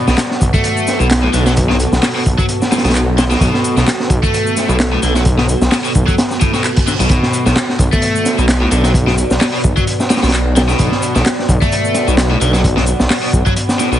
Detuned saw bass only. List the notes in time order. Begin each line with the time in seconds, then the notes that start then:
0.08 B1
0.41 B1
1.00 B1
1.34 B1
1.92 B1
2.26 B1
2.85 B1
3.41 B1
3.77 B1
4.10 B1
4.69 B1
5.02 B1
5.61 B1
5.95 B1
7.00 B1
7.10 B1
7.46 B1
7.79 B1
8.38 B1
8.72 B1
9.30 B1
9.64 B1
10.23 B1
10.79 B1
11.16 B1
11.49 B1
12.08 B1
12.41 B1
13.00 B1
13.33 B1
13.92 B1